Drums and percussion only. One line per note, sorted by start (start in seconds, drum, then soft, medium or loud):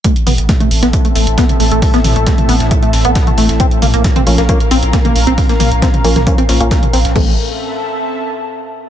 0.04 kick loud
0.04 closed hi-hat medium
0.04 tambourine medium
0.16 closed hi-hat medium
0.27 open hi-hat loud
0.27 mid tom medium
0.27 tambourine medium
0.38 closed hi-hat medium
0.38 closed hi-hat soft
0.49 kick loud
0.49 snare loud
0.49 closed hi-hat medium
0.49 mid tom medium
0.49 tambourine medium
0.60 closed hi-hat medium
0.60 mid tom medium
0.71 open hi-hat medium
0.71 tambourine medium
0.83 snare soft
0.83 closed hi-hat medium
0.93 kick loud
0.93 closed hi-hat medium
0.93 tambourine medium
1.05 closed hi-hat medium
1.16 open hi-hat loud
1.16 tambourine medium
1.27 closed hi-hat medium
1.38 kick loud
1.38 snare loud
1.38 closed hi-hat medium
1.38 tambourine medium
1.49 closed hi-hat medium
1.49 mid tom medium
1.60 open hi-hat medium
1.60 tambourine medium
1.71 closed hi-hat medium
1.82 kick loud
1.82 closed hi-hat medium
1.82 open hi-hat medium
1.94 snare medium
1.94 closed hi-hat medium
2.04 open hi-hat loud
2.04 mid tom medium
2.04 tambourine medium
2.16 closed hi-hat medium
2.27 kick loud
2.27 snare loud
2.27 closed hi-hat medium
2.27 mid tom medium
2.27 tambourine medium
2.38 closed hi-hat medium
2.38 mid tom medium
2.49 open hi-hat medium
2.49 tambourine medium
2.60 snare soft
2.60 closed hi-hat medium
2.71 kick loud
2.71 closed hi-hat medium
2.71 tambourine medium
2.83 closed hi-hat medium
2.93 snare medium
2.93 open hi-hat loud
2.93 tambourine medium
3.05 closed hi-hat medium
3.15 kick loud
3.15 snare loud
3.15 closed hi-hat medium
3.15 tambourine medium
3.27 closed hi-hat medium
3.27 mid tom medium
3.38 snare soft
3.38 open hi-hat loud
3.38 tambourine medium
3.49 snare soft
3.49 closed hi-hat medium
3.60 kick loud
3.60 closed hi-hat medium
3.60 tambourine medium
3.71 closed hi-hat medium
3.82 open hi-hat loud
3.82 mid tom loud
3.82 tambourine medium
3.94 closed hi-hat medium
3.94 closed hi-hat soft
4.04 kick loud
4.04 snare loud
4.04 closed hi-hat medium
4.04 mid tom medium
4.04 tambourine medium
4.16 closed hi-hat medium
4.16 mid tom loud
4.27 open hi-hat loud
4.27 tambourine medium
4.38 snare soft
4.38 closed hi-hat medium
4.49 kick loud
4.49 closed hi-hat medium
4.49 tambourine medium
4.60 closed hi-hat medium
4.71 open hi-hat loud
4.71 tambourine medium
4.83 closed hi-hat medium
4.93 kick loud
4.93 snare loud
4.93 closed hi-hat medium
4.93 tambourine medium
5.05 closed hi-hat medium
5.05 mid tom medium
5.16 open hi-hat loud
5.16 tambourine medium
5.27 closed hi-hat medium
5.38 kick loud
5.38 closed hi-hat medium
5.38 open hi-hat medium
5.49 snare medium
5.49 closed hi-hat medium
5.60 open hi-hat loud
5.60 mid tom loud
5.60 tambourine medium
5.72 closed hi-hat medium
5.82 kick loud
5.82 snare loud
5.82 closed hi-hat medium
5.82 mid tom medium
5.82 tambourine medium
5.94 closed hi-hat medium
5.94 mid tom medium
6.04 open hi-hat loud
6.04 tambourine medium
6.16 snare medium
6.16 closed hi-hat medium
6.16 mid tom medium
6.27 kick loud
6.27 closed hi-hat medium
6.27 tambourine medium
6.38 closed hi-hat medium
6.49 snare medium
6.49 open hi-hat loud
6.49 tambourine medium
6.61 closed hi-hat medium
6.71 kick loud
6.71 snare loud
6.71 closed hi-hat medium
6.71 tambourine medium
6.83 closed hi-hat medium
6.83 mid tom medium
6.93 snare soft
6.93 open hi-hat loud
6.93 tambourine medium
7.05 snare soft
7.05 closed hi-hat medium
7.16 kick loud
7.16 crash medium